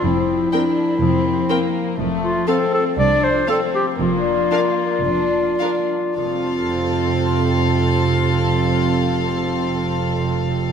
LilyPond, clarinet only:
\new Staff \with { instrumentName = "Clarinet" } { \time 4/4 \key f \major \tempo 4 = 110 e'1 | r8 f'8 a'8 a'8 d''8 c''8 a'8 g'8 | f'1 | f'1~ |
f'1 | }